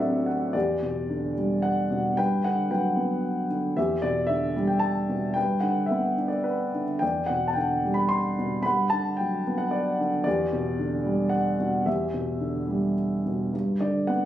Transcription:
Already playing: A1 G4 A4 D5 F#5
0.00 F#3 C4 D4 E5
0.26 F#5
0.53 E2 G4 D5
0.82 B2
1.10 D3
1.37 G3
1.62 F#5
1.91 B2
2.17 G2 B4 G5
2.44 D3 F#5
2.70 F#3 B4 G5
2.96 B3
3.50 D3
3.77 E2 G4 E5
4.02 B2 D5
4.27 D3 E5
4.56 G3
4.67 G5
4.79 A5
5.09 B2
5.34 G2 B4 G5
5.60 D3 F#5
5.86 E5
5.90 B3
6.18 D4
6.28 D5
6.44 B4
6.75 D3
6.99 E2 D5 G5
7.26 B2 F#5
7.48 A5
7.53 D3 G5
7.84 G3
7.94 B5
8.09 C6
8.39 B2
8.63 G2 F#5 B5
8.90 D3 A5
9.17 F#3 G5
9.47 B3
9.58 F#5
9.71 D5
10.00 D3
10.24 E2 G4 D5
10.53 B2
10.79 D3
11.05 G3
11.29 F#5
11.60 B2
11.86 E2 G4 E5
12.14 B2
12.41 D3
12.68 G3
13.26 B2
13.53 G2
13.81 D3 D5
14.07 B3 F#5

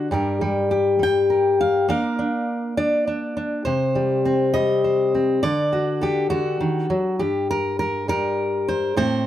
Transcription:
Already playing: D3 D4 D5
0.11 G2 G3 G4 A#4
0.41 G3
0.71 G4
0.99 G3 G5
1.30 A#4
1.61 F5
1.89 A#3 D4 A#4 F5
2.19 D4
2.77 D4 D5
3.07 D4
3.37 D4
3.65 C3 C5
3.95 G3
4.25 C4
4.54 G3 D#5
4.84 C5
5.15 C4
5.43 D3 D5
5.73 F#4
6.01 G4 A4
6.30 D3 F#4
6.61 D#3
6.90 F#3
7.19 G2 G4
7.51 A#4
7.79 A#4
8.08 G3 A#4
8.68 C5
8.96 A2 A3 C4 C5

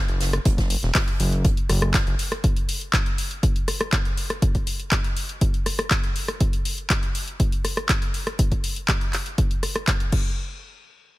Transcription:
0.08 F#1, closed hi-hat
0.21 snare, closed hi-hat, open hi-hat
0.33 cross-stick, closed hi-hat
0.45 F#1, kick, closed hi-hat
0.58 kick, snare, closed hi-hat
0.70 closed hi-hat, open hi-hat
0.83 E1, snare, closed hi-hat
0.94 kick, snare, clap, closed hi-hat, open hi-hat
1.08 closed hi-hat
1.20 F#1, closed hi-hat, open hi-hat
1.32 closed hi-hat
1.45 kick, closed hi-hat
1.57 closed hi-hat
1.69 F#1, cross-stick, closed hi-hat, open hi-hat
1.82 cross-stick, closed hi-hat
1.94 kick, snare, clap, closed hi-hat
2.07 F#1, closed hi-hat
2.19 closed hi-hat, open hi-hat
2.32 cross-stick, closed hi-hat
2.44 kick, closed hi-hat
2.57 closed hi-hat
2.69 open hi-hat
2.81 closed hi-hat
2.93 kick, clap, closed hi-hat
3.06 closed hi-hat
3.18 open hi-hat
3.31 closed hi-hat
3.43 kick, closed hi-hat
3.56 closed hi-hat
3.68 cross-stick, open hi-hat
3.81 cross-stick, closed hi-hat
3.93 kick, clap, closed hi-hat
4.05 closed hi-hat
4.17 open hi-hat
4.30 cross-stick, closed hi-hat
4.42 kick, closed hi-hat
4.55 kick, closed hi-hat
4.67 open hi-hat
4.80 closed hi-hat
4.91 kick, clap, closed hi-hat
5.04 closed hi-hat
5.17 open hi-hat
5.29 closed hi-hat
5.41 kick, closed hi-hat
5.54 closed hi-hat
5.66 cross-stick, open hi-hat
5.79 cross-stick, closed hi-hat
5.91 kick, clap, closed hi-hat
6.04 closed hi-hat
6.16 open hi-hat
6.28 cross-stick, closed hi-hat
6.41 kick, closed hi-hat
6.53 closed hi-hat
6.65 open hi-hat
6.78 closed hi-hat
6.90 kick, clap, closed hi-hat
7.03 closed hi-hat
7.15 open hi-hat
7.28 closed hi-hat
7.40 kick, closed hi-hat
7.52 closed hi-hat
7.65 cross-stick, open hi-hat
7.77 cross-stick, closed hi-hat
7.89 kick, clap, closed hi-hat
8.02 closed hi-hat
8.14 open hi-hat
8.27 cross-stick, closed hi-hat
8.39 kick, closed hi-hat
8.52 kick, closed hi-hat
8.64 open hi-hat
8.76 closed hi-hat
8.88 kick, clap, closed hi-hat
9.01 closed hi-hat
9.13 clap, open hi-hat
9.26 closed hi-hat
9.38 kick, closed hi-hat
9.51 closed hi-hat
9.63 cross-stick, open hi-hat
9.76 cross-stick, closed hi-hat
9.87 kick, clap, closed hi-hat
10.00 closed hi-hat
10.12 kick, crash

